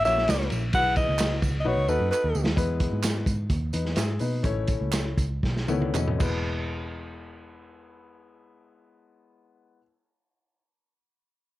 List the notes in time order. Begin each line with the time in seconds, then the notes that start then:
0.05 A#1 A#3 C#4 E4 F#4 C#5 E5, ride, tambourine
0.17 snare, high conga
0.28 C#2, snare, clap, ride, tambourine
0.40 snare
0.50 A#1, ride, tambourine, muted conga, high conga, low conga
0.73 B1 E4 G#4 B4 F#5, kick, ride, tambourine, muted conga, low conga
0.96 D#5, kick, ride, tambourine, muted conga
1.07 C#2, high conga
1.19 snare, clap, ride, tambourine
1.32 high conga
1.42 C#2, kick, ride, tambourine, muted conga, low conga
1.60 D#5
1.65 B1 D#4 F#4 B4 C#5, muted conga, high conga
1.77 C#2
1.88 D#2 D#4 F#4 A4 B4, tambourine, muted conga
1.99 F#2, high conga
2.11 B4, clap, tambourine, muted conga
2.24 D#2
2.34 D2, tambourine, muted conga, high conga, low conga
2.46 D#2, snare
2.56 E2 G#3 B3 E4 B4, kick, closed hi-hat, tambourine, muted conga, low conga
2.80 kick, closed hi-hat, muted conga
2.92 G#2, high conga
3.03 snare, clap, closed hi-hat, tambourine
3.26 G#2, kick, closed hi-hat, tambourine
3.50 D#2, kick, closed hi-hat, tambourine, high conga
3.73 E2 D#4 B4, closed hi-hat, tambourine, muted conga
3.85 snare, high conga
3.96 G#2 G#4 E5, snare, clap, closed hi-hat, tambourine
4.19 B2 D#4 B4, open hi-hat, tambourine, muted conga, high conga, low conga
4.43 A1 A3 C#4 E4 C#5, kick, closed hi-hat, tambourine, low conga
4.67 kick, closed hi-hat, tambourine, muted conga
4.80 C#2, high conga
4.92 snare, clap, closed hi-hat, tambourine
5.18 C#2, kick, closed hi-hat, tambourine, muted conga
5.43 B1, kick, snare, high conga
5.57 snare
5.68 C#2 D#3 A3 B3 C#4 E4 C#5, high tom, tambourine
5.81 high tom, high conga
5.94 E2 E3 C#4 F#4 D#5, clap, mid tom, tambourine, muted conga
6.08 mid tom
6.18 E1 G#3 B3 E4, kick, crash, tambourine, high conga
6.22 B4